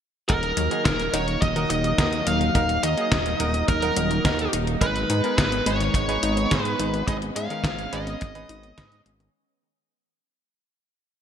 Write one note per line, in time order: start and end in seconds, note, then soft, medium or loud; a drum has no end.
0.29 0.53 D#1 medium
0.29 4.78 F#3 medium
0.29 4.78 A#3 medium
0.29 0.35 D#4 medium
0.29 0.35 D#4 loud
0.29 7.04 D#4 medium
0.29 0.35 F#4 medium
0.29 0.35 A#4 medium
0.29 0.81 A#4 medium
0.29 kick loud
0.29 closed hi-hat medium
0.43 0.53 A#3 medium
0.43 closed hi-hat soft
0.57 0.69 D#2 medium
0.57 0.70 F#3 loud
0.57 closed hi-hat medium
0.71 0.81 D#3 loud
0.71 1.10 D#4 medium
0.71 1.10 F#4 medium
0.71 1.10 G#4 medium
0.71 closed hi-hat soft
0.85 1.09 D#1 medium
0.85 0.91 D#4 loud
0.85 1.14 A#4 medium
0.85 kick loud
0.85 snare loud
0.85 closed hi-hat medium
0.99 1.13 A#3 medium
0.99 closed hi-hat soft
1.13 1.37 D#1 medium
1.13 1.20 D#4 loud
1.13 1.25 D#4 medium
1.13 1.25 F#4 medium
1.13 1.25 A#4 loud
1.13 1.41 C#5 medium
1.13 closed hi-hat medium
1.28 1.38 A#3 medium
1.28 closed hi-hat soft
1.42 1.65 D#1 medium
1.42 1.55 F#3 loud
1.42 1.68 D#5 loud
1.42 kick loud
1.42 closed hi-hat medium
1.56 1.66 D#3 loud
1.56 1.95 D#4 medium
1.56 1.95 F#4 medium
1.56 1.95 A#4 loud
1.56 closed hi-hat soft
1.70 1.94 D#1 medium
1.70 1.76 D#4 loud
1.70 2.28 D#5 loud
1.70 closed hi-hat medium
1.84 1.98 A#3 medium
1.84 closed hi-hat soft
1.98 2.22 D#2 medium
1.98 2.05 D#4 loud
1.98 2.52 D#4 medium
1.98 2.52 F#4 medium
1.98 2.52 A#4 medium
1.98 kick loud
1.98 snare loud
1.98 closed hi-hat medium
2.13 2.23 A#3 medium
2.13 closed hi-hat soft
2.27 2.50 D#1 medium
2.27 2.40 F#3 loud
2.27 2.85 F5 loud
2.27 closed hi-hat medium
2.41 2.51 D#3 loud
2.41 closed hi-hat soft
2.55 2.79 D#1 loud
2.55 2.62 D#4 medium
2.55 2.61 D#4 loud
2.55 2.62 F#4 medium
2.55 2.62 A#4 loud
2.55 kick loud
2.55 closed hi-hat medium
2.69 2.83 A#3 medium
2.69 closed hi-hat soft
2.83 2.95 D#2 medium
2.83 2.89 D#4 loud
2.83 3.64 D#5 loud
2.83 closed hi-hat medium
2.97 3.08 A#3 medium
2.97 3.37 D#4 medium
2.97 3.37 F#4 medium
2.97 3.37 G#4 medium
2.97 closed hi-hat soft
3.12 3.35 D#1 medium
3.12 3.25 F#3 loud
3.12 kick loud
3.12 snare loud
3.12 closed hi-hat medium
3.26 3.36 D#3 loud
3.26 closed hi-hat soft
3.40 3.63 D#1 medium
3.40 3.51 D#4 medium
3.40 3.46 D#4 loud
3.40 3.51 F#4 medium
3.40 3.51 A#4 loud
3.40 closed hi-hat medium
3.54 3.68 A#3 medium
3.54 closed hi-hat soft
3.68 3.92 D#1 medium
3.68 3.74 D#4 loud
3.68 4.49 A#4 medium
3.68 kick loud
3.68 closed hi-hat medium
3.82 3.93 A#3 medium
3.82 4.21 D#4 medium
3.82 4.21 F#4 medium
3.82 4.21 A#4 loud
3.82 closed hi-hat soft
3.97 4.20 D#1 medium
3.97 4.10 F#3 loud
3.97 closed hi-hat medium
4.11 4.21 D#3 loud
4.11 closed hi-hat soft
4.25 4.48 D#2 medium
4.25 4.31 D#4 loud
4.25 4.78 D#4 medium
4.25 4.78 F#4 medium
4.25 4.78 A#4 medium
4.25 kick loud
4.25 snare loud
4.25 closed hi-hat medium
4.39 4.52 A#3 medium
4.39 closed hi-hat soft
4.53 4.77 D#1 medium
4.53 4.59 D#4 loud
4.53 closed hi-hat medium
4.67 4.77 A#3 medium
4.67 closed hi-hat soft
4.81 5.05 G#1 loud
4.81 9.30 G#3 medium
4.81 4.95 G#3 loud
4.81 9.30 B3 medium
4.81 4.88 D#4 medium
4.81 4.88 G#4 medium
4.81 4.88 B4 loud
4.81 5.37 B4 medium
4.81 kick loud
4.81 closed hi-hat medium
4.96 5.06 D#3 loud
4.96 closed hi-hat soft
5.10 5.22 G#2 medium
5.10 5.16 D#4 loud
5.10 closed hi-hat medium
5.24 5.37 B3 medium
5.24 5.63 D#4 medium
5.24 5.63 G#4 medium
5.24 5.63 A#4 medium
5.24 closed hi-hat soft
5.38 5.62 G#1 medium
5.38 5.44 D#4 loud
5.38 5.67 B4 medium
5.38 kick loud
5.38 snare loud
5.38 closed hi-hat medium
5.52 5.62 B3 medium
5.52 closed hi-hat soft
5.66 5.90 G#1 medium
5.66 5.80 G#3 loud
5.66 5.77 D#4 medium
5.66 5.77 G#4 medium
5.66 5.77 B4 loud
5.66 6.64 C#5 medium
5.66 closed hi-hat medium
5.80 5.91 D#3 loud
5.80 closed hi-hat soft
5.94 6.18 G#1 medium
5.94 6.01 D#4 loud
5.94 kick loud
5.94 closed hi-hat medium
6.09 6.22 B3 medium
6.09 6.48 D#4 medium
6.09 6.48 G#4 medium
6.09 6.48 B4 loud
6.09 closed hi-hat soft
6.23 6.46 G#1 medium
6.23 6.29 D#4 loud
6.23 closed hi-hat medium
6.37 6.47 B3 medium
6.37 closed hi-hat soft
6.51 6.75 G#2 medium
6.51 6.65 G#3 loud
6.51 7.04 D#4 medium
6.51 7.04 G#4 medium
6.51 7.04 B4 medium
6.51 kick loud
6.51 snare loud
6.51 closed hi-hat medium
6.64 6.76 D#3 loud
6.64 7.07 B4 medium
6.64 closed hi-hat soft
6.79 7.03 G#1 medium
6.79 6.86 D#4 loud
6.79 closed hi-hat medium
6.94 7.07 B3 medium
6.94 closed hi-hat soft
7.08 7.31 G#1 loud
7.08 9.32 C#4 medium
7.08 7.14 D#4 loud
7.08 7.15 D#4 medium
7.08 7.15 G#4 medium
7.08 7.15 B4 medium
7.08 7.15 D#5 loud
7.08 kick loud
7.08 closed hi-hat medium
7.22 7.32 B3 medium
7.22 closed hi-hat soft
7.36 7.48 G#2 medium
7.36 7.50 G#3 loud
7.36 7.94 F5 loud
7.36 closed hi-hat medium
7.50 7.60 D#3 loud
7.50 7.89 D#4 medium
7.50 7.89 G#4 medium
7.50 7.89 A#4 medium
7.50 closed hi-hat soft
7.64 7.88 G#1 medium
7.64 7.71 D#4 loud
7.64 kick loud
7.64 snare loud
7.64 closed hi-hat medium
7.79 7.92 B3 medium
7.79 closed hi-hat soft
7.93 8.16 G#1 medium
7.93 8.04 D#4 medium
7.93 7.99 D#4 loud
7.93 8.04 G#4 medium
7.93 8.04 B4 loud
7.93 9.02 D#5 medium
7.93 closed hi-hat medium
8.07 8.17 B3 medium
8.07 closed hi-hat soft
8.21 8.45 G#1 medium
8.21 8.35 G#3 loud
8.21 kick loud
8.21 closed hi-hat medium
8.35 8.45 D#3 loud
8.35 8.74 D#4 medium
8.35 8.74 G#4 medium
8.35 8.74 B4 loud
8.35 closed hi-hat soft
8.49 8.73 G#1 medium
8.49 8.55 D#4 loud
8.49 closed hi-hat medium
8.63 8.77 B3 medium
8.63 closed hi-hat soft
8.78 9.01 G#2 medium
8.78 9.31 D#4 medium
8.78 8.84 D#4 loud
8.78 9.31 G#4 medium
8.78 9.31 B4 medium
8.78 kick loud
8.78 snare loud
8.78 closed hi-hat medium
8.92 9.02 B3 medium
8.92 closed hi-hat soft
9.06 9.30 G#1 medium
9.06 9.19 G#3 loud
9.06 closed hi-hat medium
9.20 9.30 D#3 loud
9.20 closed hi-hat soft